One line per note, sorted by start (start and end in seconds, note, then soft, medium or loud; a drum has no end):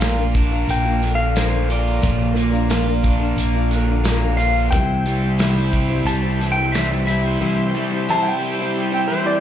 0.00 0.64 A#1 medium
0.00 1.03 A#2 medium
0.00 0.17 A#2 medium
0.00 0.18 F3 medium
0.00 0.68 A#3 medium
0.00 2.00 A#3 medium
0.00 0.18 A#3 medium
0.00 2.00 D4 medium
0.00 0.17 D4 medium
0.00 2.00 F4 medium
0.00 0.16 F4 medium
0.00 2.01 A#4 medium
0.00 0.15 A#4 medium
0.00 0.65 F5 medium
0.00 snare loud
0.00 closed hi-hat medium
0.16 0.52 A#3 soft
0.16 0.52 D4 soft
0.16 0.51 F4 medium
0.16 0.50 A#4 medium
0.34 2.03 D4 medium
0.34 kick medium
0.34 closed hi-hat medium
0.51 0.86 A#3 soft
0.51 0.85 D4 soft
0.51 0.84 F4 medium
0.51 0.83 A#4 medium
0.68 1.99 A#1 medium
0.68 1.35 A#3 medium
0.68 1.11 G5 loud
0.68 closed hi-hat medium
0.84 1.00 A#3 soft
0.84 1.01 D4 medium
0.84 1.02 F4 medium
0.84 1.02 A#4 medium
1.01 2.71 D3 medium
1.01 1.18 A#3 medium
1.01 1.19 D4 medium
1.01 1.19 F4 medium
1.01 1.17 A#4 medium
1.01 closed hi-hat medium
1.15 1.36 A#4 medium
1.15 1.35 F5 medium
1.20 1.35 A#3 soft
1.20 1.36 D4 soft
1.20 1.36 F4 soft
1.35 1.52 A#2 medium
1.35 1.53 F3 medium
1.35 1.53 A#3 medium
1.35 1.53 D4 medium
1.35 1.51 F4 medium
1.35 1.51 A#4 medium
1.35 1.68 C5 medium
1.35 snare loud
1.35 closed hi-hat medium
1.52 1.67 A#3 soft
1.52 1.67 D4 soft
1.52 1.69 F4 soft
1.52 1.69 A#4 soft
1.68 2.00 A#3 soft
1.68 2.01 D4 medium
1.68 2.00 F4 medium
1.68 2.01 A#4 medium
1.68 3.01 D5 medium
1.68 closed hi-hat medium
2.01 3.34 A#1 loud
2.01 2.36 A#2 medium
2.01 2.35 F3 medium
2.01 2.32 A#3 medium
2.01 4.70 A#3 medium
2.01 2.34 D4 medium
2.01 4.70 D4 medium
2.01 2.35 F4 medium
2.01 2.36 A#4 medium
2.01 kick loud
2.01 closed hi-hat medium
2.05 4.70 F4 medium
2.33 2.52 A#3 medium
2.33 2.52 D4 medium
2.33 2.52 F4 medium
2.33 2.50 A#4 medium
2.33 closed hi-hat medium
2.51 2.68 A#3 soft
2.51 2.68 D4 soft
2.51 2.69 F4 medium
2.51 2.69 A#4 medium
2.68 2.86 A#2 medium
2.68 2.87 F3 medium
2.68 2.87 A#3 medium
2.68 2.86 D4 medium
2.68 2.85 F4 medium
2.68 2.84 A#4 loud
2.68 snare loud
2.68 closed hi-hat loud
2.85 3.21 A#3 medium
2.85 3.20 D4 soft
2.85 3.20 F4 medium
2.85 3.18 A#4 medium
3.03 4.72 D4 medium
3.03 kick medium
3.03 closed hi-hat medium
3.20 3.55 A#3 soft
3.20 3.55 D4 medium
3.20 3.54 F4 medium
3.20 3.53 A#4 medium
3.37 4.68 A#1 loud
3.37 4.03 A#3 medium
3.37 closed hi-hat loud
3.54 3.71 A#3 medium
3.54 3.72 D4 medium
3.54 3.72 F4 medium
3.54 3.71 A#4 medium
3.70 4.72 D3 medium
3.70 3.89 A#3 medium
3.70 3.89 D4 medium
3.70 closed hi-hat medium
3.75 3.90 F4 medium
3.75 3.88 A#4 medium
3.90 4.04 A#3 soft
3.90 4.04 D4 soft
3.90 4.06 F4 soft
3.90 4.05 A#4 medium
4.05 4.22 A#2 medium
4.05 4.22 F3 medium
4.05 4.22 A#3 medium
4.05 4.22 D4 medium
4.05 4.22 F4 medium
4.05 4.20 A#4 medium
4.05 snare loud
4.05 closed hi-hat medium
4.21 4.37 A#3 soft
4.21 4.38 D4 soft
4.21 4.39 F4 soft
4.21 4.38 A#4 soft
4.37 4.72 A#3 medium
4.37 4.72 D4 medium
4.37 4.73 F4 medium
4.37 4.73 A#4 medium
4.37 4.70 F5 medium
4.37 closed hi-hat medium
4.71 6.03 C2 loud
4.71 5.05 C3 medium
4.71 5.06 E3 medium
4.71 5.04 G3 medium
4.71 7.39 C4 medium
4.71 5.05 C4 medium
4.71 5.06 E4 medium
4.71 7.39 E4 medium
4.71 7.39 G4 medium
4.71 7.39 C5 medium
4.71 5.07 C5 medium
4.71 6.02 G5 loud
4.71 kick loud
4.71 closed hi-hat medium
5.05 5.22 G3 medium
5.05 5.22 C4 medium
5.05 5.22 E4 medium
5.05 5.20 C5 medium
5.05 closed hi-hat medium
5.21 5.38 G3 soft
5.21 5.39 C4 soft
5.21 5.39 E4 soft
5.21 5.39 C5 medium
5.39 5.56 C3 medium
5.39 5.56 E3 medium
5.39 5.56 G3 medium
5.39 5.56 C4 medium
5.39 5.56 E4 medium
5.39 5.55 C5 medium
5.39 snare loud
5.39 closed hi-hat medium
5.56 5.91 G3 soft
5.56 5.91 C4 soft
5.56 5.89 E4 medium
5.56 5.89 C5 medium
5.73 8.42 C4 medium
5.73 kick medium
5.73 closed hi-hat soft
5.90 6.25 G3 soft
5.90 6.24 C4 soft
5.90 6.24 E4 medium
5.90 6.22 C5 medium
6.05 7.36 C2 medium
6.05 6.72 G3 medium
6.05 6.53 A5 loud
6.05 closed hi-hat medium
6.23 6.38 G3 soft
6.23 6.39 C4 medium
6.23 6.40 E4 medium
6.23 6.40 C5 medium
6.39 8.08 E3 medium
6.39 6.56 G3 medium
6.39 6.57 C4 medium
6.39 6.57 E4 medium
6.39 6.55 C5 medium
6.39 closed hi-hat medium
6.52 6.75 G5 loud
6.56 6.73 C4 soft
6.56 6.74 E4 soft
6.56 6.73 C5 medium
6.60 6.73 G3 soft
6.72 6.90 C3 medium
6.72 6.91 E3 medium
6.72 6.91 G3 medium
6.72 6.91 C4 medium
6.72 6.91 E4 medium
6.72 7.06 E5 medium
6.72 snare loud
6.72 closed hi-hat medium
6.76 6.89 C5 medium
6.90 7.07 G3 soft
6.90 7.07 C4 soft
6.90 7.08 E4 soft
6.90 7.07 C5 medium
7.07 7.40 G3 medium
7.07 7.40 C4 medium
7.07 7.40 E4 medium
7.07 7.41 C5 medium
7.07 8.37 E5 medium
7.07 closed hi-hat medium
7.41 7.74 C3 medium
7.41 7.75 E3 medium
7.41 7.72 G3 medium
7.41 7.74 C4 medium
7.41 9.40 E4 medium
7.41 7.75 E4 medium
7.41 9.40 G4 medium
7.41 9.40 C5 medium
7.41 7.75 C5 medium
7.74 7.91 G3 medium
7.74 7.92 C4 medium
7.74 7.92 E4 medium
7.74 7.91 C5 medium
7.92 8.09 G3 medium
7.92 8.09 C4 medium
7.92 8.09 E4 medium
7.92 8.08 C5 medium
8.09 8.25 C3 medium
8.09 8.25 E3 loud
8.09 8.26 G3 medium
8.09 8.26 C4 medium
8.09 8.26 E4 medium
8.09 8.25 C5 loud
8.09 8.25 A5 loud
8.22 8.57 C5 medium
8.22 8.26 F#5 medium
8.27 8.60 G3 soft
8.27 8.60 C4 medium
8.27 8.59 E4 medium
8.27 8.91 G5 medium
8.42 9.40 C4 medium
8.59 8.93 G3 medium
8.59 8.92 C4 medium
8.59 8.91 E4 medium
8.59 8.91 C5 medium
8.76 9.40 G3 medium
8.92 9.06 G3 medium
8.92 9.07 C4 medium
8.92 9.08 E4 medium
8.92 9.09 C5 medium
8.92 9.26 G5 medium
9.07 9.24 G3 medium
9.07 9.25 C4 medium
9.07 9.24 E4 medium
9.07 9.40 C5 medium
9.07 9.23 C5 medium
9.11 9.40 E3 medium
9.24 9.40 G3 soft
9.24 9.40 C4 soft
9.24 9.40 E4 medium
9.24 9.40 C5 medium
9.24 9.40 D5 medium